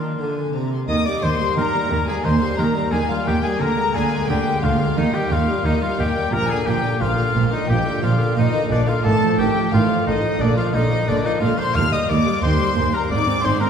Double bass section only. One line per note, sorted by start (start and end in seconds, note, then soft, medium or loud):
0.89 0.97 D#2 medium
1.23 1.31 D#2 medium
1.57 1.65 D#2 medium
1.91 1.99 D#2 medium
2.25 2.33 D#2 medium
2.59 2.67 D#2 medium
2.93 3.01 D#2 medium
3.27 3.35 D#2 medium
3.61 3.69 D2 medium
3.95 4.03 D2 medium
4.29 4.37 D2 medium
4.63 4.71 D2 medium
4.97 5.05 D#2 medium
5.30 5.38 D#2 medium
5.64 5.72 D#2 medium
5.99 6.07 D#2 medium
6.33 6.41 A#1 medium
6.67 6.75 A#1 medium
7.01 7.09 A#1 medium
7.35 7.43 A#1 medium
7.70 7.78 A#1 medium
8.04 8.12 A#1 medium
8.38 8.46 A#1 medium
8.71 8.79 A#1 medium
9.05 9.13 A1 medium
9.39 9.47 A1 medium
9.73 9.81 A1 medium
10.06 10.14 A1 medium
10.40 10.48 A#1 medium
10.74 10.82 A#1 medium
11.08 11.16 A#1 medium
11.42 11.50 A#1 medium
11.76 11.84 D#2 medium
12.10 12.18 D#2 medium
12.44 12.52 D#2 medium
12.77 12.85 D#2 medium
13.11 13.19 G#1 medium
13.45 13.53 G#1 medium